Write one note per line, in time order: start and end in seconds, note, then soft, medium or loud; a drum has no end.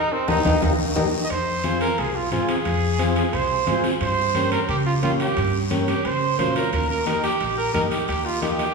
0.00 0.14 D#4 medium
0.12 0.30 C4 medium
0.28 0.41 D#2 loud
0.28 0.39 D#4 loud
0.28 0.61 D#4 loud
0.28 0.39 G4 loud
0.28 0.39 A#4 medium
0.28 high conga medium
0.28 high timbale medium
0.28 long guiro loud
0.45 0.58 D#2 medium
0.45 0.56 D#4 medium
0.45 0.56 G4 loud
0.45 0.56 A#4 medium
0.45 high conga loud
0.45 high timbale loud
0.45 long guiro medium
0.62 0.75 D#2 loud
0.62 0.73 D#4 medium
0.62 0.73 G4 medium
0.62 0.73 A#4 medium
0.62 high conga loud
0.62 high timbale medium
0.62 long guiro loud
0.96 1.09 D#2 loud
0.96 1.07 D#4 loud
0.96 1.07 G4 loud
0.96 1.07 A#4 medium
0.96 high conga loud
0.96 high timbale medium
0.96 long guiro loud
1.24 1.32 D#5 medium
1.30 1.84 F2 medium
1.30 1.81 C5 medium
1.30 high timbale medium
1.64 1.88 C4 medium
1.64 1.88 F4 medium
1.64 1.88 G#4 medium
1.64 high conga medium
1.64 high timbale medium
1.64 short guiro medium
1.81 2.00 A#4 medium
1.81 high timbale medium
1.81 short guiro medium
1.98 2.25 C2 medium
1.98 2.17 G#4 medium
1.98 high conga soft
1.98 high timbale medium
1.98 long guiro medium
2.16 2.31 F4 medium
2.31 2.45 G#2 medium
2.31 2.56 C4 medium
2.31 2.51 F4 medium
2.31 2.56 F4 medium
2.31 2.56 G#4 medium
2.31 high conga medium
2.31 high timbale medium
2.31 short guiro medium
2.48 3.16 G#4 loud
2.48 high timbale medium
2.48 short guiro medium
2.65 3.20 F2 loud
2.65 high conga soft
2.65 high timbale medium
2.65 long guiro medium
2.99 3.23 C4 medium
2.99 3.23 F4 medium
2.99 3.23 G#4 medium
2.99 high conga medium
2.99 high timbale medium
2.99 short guiro medium
3.16 3.35 G#4 medium
3.16 high timbale medium
3.16 short guiro medium
3.33 3.60 C2 loud
3.33 3.84 C5 medium
3.33 high conga soft
3.33 high timbale medium
3.33 long guiro medium
3.67 3.81 G#2 medium
3.67 3.91 C4 medium
3.67 3.91 F4 medium
3.67 3.91 G#4 medium
3.67 high conga medium
3.67 high timbale medium
3.67 low timbale medium
3.67 short guiro medium
3.84 high timbale medium
3.84 short guiro medium
4.01 4.55 G2 loud
4.01 4.49 C5 medium
4.01 high conga soft
4.01 high timbale medium
4.01 long guiro medium
4.35 4.59 A#3 medium
4.35 4.59 C#4 medium
4.35 4.59 G4 medium
4.35 high conga medium
4.35 high timbale medium
4.35 short guiro medium
4.52 4.60 A#4 medium
4.52 high timbale medium
4.52 short guiro medium
4.69 4.96 C#3 medium
4.69 4.77 G4 medium
4.69 high conga soft
4.69 high timbale medium
4.69 long guiro medium
4.86 4.94 F4 medium
5.02 5.17 A#2 medium
5.02 5.27 A#3 medium
5.02 5.27 C#4 medium
5.02 5.11 F4 medium
5.02 5.27 G4 medium
5.02 high conga medium
5.02 high timbale medium
5.02 short guiro medium
5.20 5.58 G4 medium
5.20 high timbale medium
5.20 short guiro medium
5.37 5.91 G2 medium
5.37 high timbale medium
5.37 long guiro medium
5.71 5.95 A#3 medium
5.71 5.95 C#4 medium
5.71 5.95 G4 medium
5.71 high conga medium
5.71 high timbale medium
5.71 short guiro medium
5.88 6.07 G4 medium
5.88 high timbale medium
5.88 short guiro medium
6.05 6.32 C#3 medium
6.05 6.39 C5 loud
6.05 high conga soft
6.05 high timbale medium
6.05 long guiro medium
6.38 6.53 A#2 medium
6.38 6.62 A#3 medium
6.38 6.63 C#4 medium
6.38 6.63 F4 medium
6.38 6.55 C5 medium
6.38 high conga medium
6.38 high timbale medium
6.38 low timbale medium
6.38 short guiro medium
6.56 6.72 A#4 medium
6.56 high timbale medium
6.56 short guiro medium
6.73 7.27 D#2 loud
6.73 6.89 A#4 medium
6.73 high conga soft
6.73 high timbale medium
6.73 long guiro medium
6.90 7.05 A#4 medium
7.06 7.30 A#3 medium
7.06 7.30 D#4 medium
7.06 7.30 G4 medium
7.06 7.23 A#4 medium
7.06 high conga medium
7.06 high timbale medium
7.06 short guiro medium
7.23 7.55 G4 medium
7.23 high timbale medium
7.23 short guiro medium
7.40 7.68 A#1 medium
7.40 high conga soft
7.40 high timbale medium
7.40 long guiro medium
7.58 7.73 A#4 medium
7.74 7.88 G2 medium
7.74 7.98 A#3 medium
7.74 7.98 D#4 medium
7.74 7.98 G4 medium
7.74 7.82 A#4 medium
7.74 high conga medium
7.74 high timbale medium
7.74 short guiro medium
7.91 8.07 G4 medium
7.91 high timbale medium
7.91 short guiro medium
8.08 8.63 D#2 medium
8.08 8.27 G4 medium
8.08 high conga soft
8.08 high timbale medium
8.08 long guiro medium
8.26 8.42 F4 medium
8.42 8.66 A#3 medium
8.42 8.66 D#4 medium
8.42 8.66 G4 medium
8.42 8.74 G4 medium
8.42 high conga medium
8.42 high timbale medium
8.42 short guiro medium
8.59 high timbale medium
8.59 short guiro medium